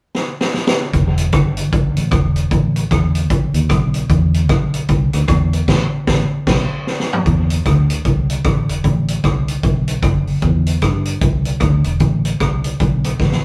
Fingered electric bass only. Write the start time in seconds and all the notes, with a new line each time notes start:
0.94 E1
1.33 G1
1.73 C2
1.97 A1
2.12 E1
2.51 A1
2.91 E2
3.30 B1
3.54 D#2
3.70 B1
4.09 E2
4.49 B1
4.89 C2
5.14 D2
5.28 E2
5.68 A1
6.08 A1
6.47 B1
7.26 E2
7.66 D2
8.05 C2
8.45 A1
8.68 E1
8.84 A1
9.24 C2
9.63 B1
10.03 F#1
10.42 E2
10.82 G2
11.21 C2
11.61 D2
11.85 E1
12.00 A1
12.41 C2
12.80 B1
13.20 A1